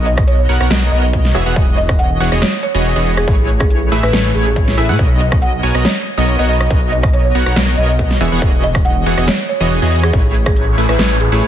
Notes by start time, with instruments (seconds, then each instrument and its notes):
Already playing: detuned saw bass B1, supersaw synth B3 F#4 A#4 C#5 D#5, digital synth lead D#5
0.06 marimba D#5, closed hi-hat
0.18 kick, cross-stick
0.27 marimba C#5, closed hi-hat
0.39 marimba C#5
0.49 detuned saw bass B1, supersaw synth B3 F#4 A#4 C#5 F#5, digital synth lead F#5, closed hi-hat
0.53 closed hi-hat
0.56 closed hi-hat
0.60 detuned saw bass B1, supersaw synth B3 F#4 A#4 C#5 F#5, digital synth lead F#5, cross-stick
0.70 detuned saw bass B1, supersaw synth B3 F#4 A#4 C#5 D#5, digital synth lead D#5, snare, closed hi-hat
0.92 detuned saw bass B1, supersaw synth B3 F#4 A#4 C#5 D#5, marimba D#5, digital synth lead D#5, closed hi-hat
1.03 marimba D#5
1.13 kick, closed hi-hat
1.25 snare
1.35 detuned saw bass E1, supersaw synth E3 B3 F#4 G#4 C#5 E5, digital synth lead E5, closed hi-hat
1.39 closed hi-hat
1.42 closed hi-hat
1.46 detuned saw bass E1, supersaw synth E3 B3 F#4 G#4 C#5 F#5, digital synth lead F#5
1.56 detuned saw bass E1, supersaw synth E3 B3 F#4, digital synth lead D#5, kick, closed hi-hat
1.77 marimba D#5, closed hi-hat
1.89 kick, cross-stick
1.99 marimba F#5, closed hi-hat
2.20 detuned saw bass E1, supersaw synth E3 B3 F#4 G#4 C#5 F#5, digital synth lead F#5, closed hi-hat
2.24 closed hi-hat
2.28 digital synth lead D#5, closed hi-hat
2.32 detuned saw bass E1, supersaw synth E3 B3 F#4 G#4 C#5 D#5, cross-stick
2.42 marimba C#5, snare, closed hi-hat
2.63 marimba C#5, closed hi-hat
2.75 detuned saw bass E1, supersaw synth E3 B3 F#4 G#4 C#5 D#5, digital synth lead D#5
2.85 closed hi-hat
2.96 detuned saw bass E1, supersaw synth E3 B3 F#4 G#4 C#5 D#5, digital synth lead D#5
3.06 closed hi-hat
3.10 closed hi-hat
3.13 closed hi-hat
3.17 marimba G#4, cross-stick
3.27 detuned saw bass A1, supersaw synth A3 E4 G#4 B4 C#5, digital synth lead C#5, kick, closed hi-hat
3.49 closed hi-hat
3.60 marimba G#4, kick, cross-stick
3.70 closed hi-hat
3.92 detuned saw bass A1, supersaw synth A3 E4 G#4 B4 E5, digital synth lead E5, closed hi-hat
3.96 closed hi-hat
3.99 marimba B4, closed hi-hat
4.03 detuned saw bass A1, supersaw synth A3 E4 G#4 B4 E5, digital synth lead E5, cross-stick
4.13 detuned saw bass A1, supersaw synth A3 E4 G#4 B4 C#5, marimba B4, digital synth lead C#5, snare, closed hi-hat
4.35 detuned saw bass A1, supersaw synth A3 E4 G#4 B4 C#5, marimba G#4, digital synth lead C#5, closed hi-hat
4.46 marimba G#4
4.56 kick, closed hi-hat
4.68 snare
4.78 detuned saw bass A1, supersaw synth A3 E4 G#4 B4 E5, digital synth lead E5, closed hi-hat
4.82 closed hi-hat
4.85 closed hi-hat
4.89 detuned saw bass A2, supersaw synth A3 E4 G#4 B4 F#5, digital synth lead F#5
4.99 detuned saw bass B1, supersaw synth F#4 A#4 C#5 D#5, digital synth lead D#5, kick, closed hi-hat
5.21 marimba D#5, closed hi-hat
5.32 kick, cross-stick
5.42 marimba F#5, closed hi-hat
5.63 detuned saw bass B1, supersaw synth B3 F#4 A#4 C#5 G#5, digital synth lead G#5, closed hi-hat
5.67 closed hi-hat
5.71 supersaw synth B3 F#4 A#4 C#5 D#5, closed hi-hat
5.75 detuned saw bass B1, digital synth lead D#5, cross-stick
5.85 marimba C#5, snare, closed hi-hat
6.06 closed hi-hat
6.18 detuned saw bass B1, supersaw synth B3 F#4 A#4 C#5 D#5, digital synth lead D#5
6.28 closed hi-hat
6.39 detuned saw bass B1, supersaw synth B3 F#4 A#4 C#5 D#5, marimba D#5, digital synth lead D#5
6.49 marimba D#5, closed hi-hat
6.53 closed hi-hat
6.56 closed hi-hat
6.61 cross-stick
6.70 detuned saw bass B1, supersaw synth B3 F#4 A#4 C#5 D#5, digital synth lead D#5, kick, closed hi-hat
6.92 marimba D#5, closed hi-hat
7.03 kick, cross-stick
7.13 marimba C#5, closed hi-hat
7.25 marimba C#5
7.35 detuned saw bass B1, supersaw synth B3 F#4 A#4 C#5 F#5, digital synth lead F#5, closed hi-hat
7.39 closed hi-hat
7.42 closed hi-hat
7.46 detuned saw bass B1, supersaw synth B3 F#4 A#4 C#5 F#5, digital synth lead F#5, cross-stick
7.56 detuned saw bass B1, supersaw synth B3 F#4 A#4 C#5 D#5, digital synth lead D#5, snare, closed hi-hat
7.77 detuned saw bass B1, supersaw synth B3 F#4 A#4 C#5 D#5, digital synth lead D#5, marimba D#5, closed hi-hat
7.89 marimba D#5
7.99 kick, closed hi-hat
8.11 snare
8.20 detuned saw bass E1, supersaw synth E3 B3 F#4 G#4 C#5 E5, digital synth lead E5, closed hi-hat
8.24 closed hi-hat
8.28 closed hi-hat
8.32 detuned saw bass E1, supersaw synth E3 B3 F#4 G#4 C#5 F#5, digital synth lead F#5
8.42 detuned saw bass E1, supersaw synth E3 B3 F#4 G#4 C#5 D#5, digital synth lead D#5, kick, closed hi-hat
8.64 marimba D#5, closed hi-hat
8.75 kick, cross-stick
8.85 marimba F#5, closed hi-hat
9.06 detuned saw bass E1, supersaw synth E3 B3 F#4 G#4 C#5 F#5, digital synth lead F#5, closed hi-hat
9.10 closed hi-hat
9.13 closed hi-hat
9.17 detuned saw bass E1, supersaw synth E3 B3 F#4 G#4 C#5 D#5, digital synth lead D#5, cross-stick
9.28 marimba C#5, snare, closed hi-hat
9.49 marimba C#5, closed hi-hat
9.60 detuned saw bass E1, supersaw synth E3 B3 F#4 G#4 C#5 D#5, digital synth lead D#5
9.71 closed hi-hat
9.82 detuned saw bass E2, supersaw synth E3 B3 F#4 G#4 C#5 D#5, digital synth lead D#5
9.92 closed hi-hat
9.96 closed hi-hat
9.99 closed hi-hat
10.03 marimba G#4, cross-stick
10.13 detuned saw bass A1, supersaw synth A3 E4 G#4 B4 C#5, digital synth lead C#5, kick, closed hi-hat, noise sweep
10.35 closed hi-hat
10.46 marimba G#4, kick, cross-stick
10.56 closed hi-hat
10.78 detuned saw bass A1, supersaw synth A3 E4 G#4 B4 E5, digital synth lead E5, closed hi-hat
10.82 closed hi-hat
10.85 closed hi-hat
10.89 detuned saw bass A1, supersaw synth A3 E4 G#4 B4 E5, marimba B4, digital synth lead E5, cross-stick
10.99 detuned saw bass A1, supersaw synth A3 E4 G#4 B4 C#5, marimba B4, digital synth lead C#5, snare, closed hi-hat
11.20 marimba G#4, closed hi-hat
11.32 detuned saw bass A1, supersaw synth A3 E4 G#4 B4 C#5, marimba G#4, digital synth lead C#5
11.42 closed hi-hat